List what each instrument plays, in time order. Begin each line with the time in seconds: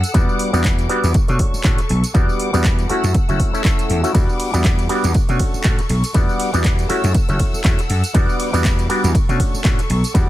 Already playing: string section A4 F#5 E6
0.04 closed hi-hat, tambourine
0.14 slap bass E2, clav G3 B3 D4 F#4, string section G3 D6, kick, closed hi-hat, tambourine
0.29 tambourine
0.39 open hi-hat
0.53 slap bass E2, clav G3 B3 D4 F#4, closed hi-hat, tambourine
0.64 kick, clap, closed hi-hat, tambourine
0.79 closed hi-hat, tambourine
0.89 clav G3 B3 D4 F#4, open hi-hat
1.04 slap bass E2, closed hi-hat, tambourine
1.14 string section A4 C#6, muted slap bass stroke, kick, closed hi-hat, tambourine
1.28 slap bass B2, clav A3 C#4 D4 F#4, closed hi-hat, tambourine
1.39 kick, open hi-hat
1.54 muted slap bass stroke, tambourine
1.64 slap bass A2, clav A3 C#4 D4 F#4, kick, clap, closed hi-hat, tambourine
1.78 closed hi-hat, tambourine
1.89 slap bass B1, open hi-hat
2.04 closed hi-hat, tambourine
2.14 slap bass E2, string section G3 F#5 D6, clav G3 B3 D4 F#4, kick, closed hi-hat, tambourine
2.29 tambourine
2.40 open hi-hat
2.53 slap bass E2, clav G3 B3 D4 F#4, closed hi-hat, tambourine
2.64 kick, clap, closed hi-hat, tambourine
2.79 closed hi-hat, tambourine
2.89 clav A3 C#4 E4 F#4, string section A4 E6, muted slap bass stroke, open hi-hat
3.04 slap bass F#2, closed hi-hat, tambourine
3.14 kick, closed hi-hat
3.29 slap bass F#1, clav A3 C#4 E4 F#4, closed hi-hat, tambourine
3.40 kick, open hi-hat
3.53 clav A3 C#4 E4 A4, tambourine
3.64 clav A3 C#4 E4 A4, kick, clap, closed hi-hat, tambourine
3.79 closed hi-hat, tambourine
3.90 slap bass E2, open hi-hat
4.03 clav A3 C#4 E4 F#4, closed hi-hat, tambourine
4.14 slap bass E2, string section G3 F#5 D6, clav G3 B3 D4 F#4, kick, closed hi-hat, ride, tambourine
4.29 tambourine
4.40 open hi-hat, ride
4.54 slap bass E2, clav G3 B3 D4 F#4, closed hi-hat, tambourine
4.64 kick, clap, closed hi-hat, ride, tambourine
4.79 closed hi-hat, tambourine
4.89 clav G3 B3 D4 F#4, open hi-hat, ride
5.04 slap bass E2, closed hi-hat, tambourine
5.14 string section A4 C#6, muted slap bass stroke, kick, closed hi-hat, ride, tambourine
5.29 slap bass B2, clav A3 C#4 D4 F#4, closed hi-hat, tambourine
5.39 kick, open hi-hat, ride
5.54 muted slap bass stroke, tambourine
5.64 slap bass A2, clav A3 C#4 D4 F#4, kick, clap, closed hi-hat, ride, tambourine
5.79 closed hi-hat, tambourine
5.89 slap bass B1, open hi-hat, ride
6.04 closed hi-hat, tambourine
6.14 slap bass E2, string section G3 F#5 D6, clav G3 B3 D4 F#4, kick, closed hi-hat, ride, tambourine
6.29 tambourine
6.40 open hi-hat, ride
6.54 slap bass E2, clav G3 B3 D4 F#4, closed hi-hat, tambourine
6.64 kick, clap, closed hi-hat, ride, tambourine
6.79 closed hi-hat, tambourine
6.89 clav A3 C#4 E4 F#4, string section A4 F#5 E6, muted slap bass stroke, open hi-hat, ride
7.04 slap bass F#2, closed hi-hat, tambourine
7.15 kick, closed hi-hat, ride, tambourine
7.29 slap bass F#1, clav A3 C#4 E4 F#4, closed hi-hat, tambourine
7.40 kick, open hi-hat, ride
7.54 muted slap bass stroke, tambourine
7.64 slap bass E2, clav A3 C#4 E4 F#4, kick, clap, closed hi-hat, ride, tambourine
7.79 closed hi-hat, tambourine
7.90 slap bass F#2, open hi-hat, ride
8.04 closed hi-hat, tambourine
8.14 slap bass E2, clav G3 B3 D4 F#4, string section G3 D6, kick, closed hi-hat, ride
8.29 tambourine
8.40 open hi-hat, ride
8.53 slap bass E2, clav G3 B3 D4 F#4, closed hi-hat, tambourine
8.65 kick, clap, closed hi-hat, ride, tambourine
8.79 closed hi-hat, tambourine
8.89 clav G3 B3 D4 F#4, open hi-hat, ride
9.04 slap bass E2, closed hi-hat, tambourine
9.14 string section A4 C#6, muted slap bass stroke, kick, closed hi-hat, ride, tambourine
9.29 slap bass B2, clav A3 C#4 D4 F#4, closed hi-hat, tambourine
9.40 kick, open hi-hat, ride
9.54 muted slap bass stroke, tambourine
9.64 slap bass A2, clav A3 C#4 D4 F#4, kick, clap, closed hi-hat, ride, tambourine
9.79 closed hi-hat, tambourine
9.90 slap bass B1, open hi-hat, ride
10.04 closed hi-hat, tambourine
10.14 slap bass E2, string section G3 F#5 D6, clav G3 B3 D4 F#4, kick, closed hi-hat, ride, tambourine